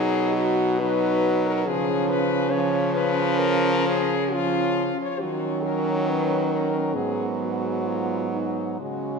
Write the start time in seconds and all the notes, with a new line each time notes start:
Already playing: B2 F#3 D#4 G#4
0.33 F#4
0.79 F#3 D#4 B4
1.46 A#4
1.66 C#3 F3 C#4 G#4
2.09 B4
2.51 F3 C#4 C#5
2.94 B4
3.39 A#4
3.87 G#4
4.31 F3 C#4 F4
5.02 C#5
5.20 D#3 F#3 C#4 F#4
5.64 A#4
6.08 B4
6.51 A#4
6.94 G#2 F#3 B3 G#4
7.40 F#4
7.87 F4
8.32 D#4
8.80 C#3 G#3 C#4 F#4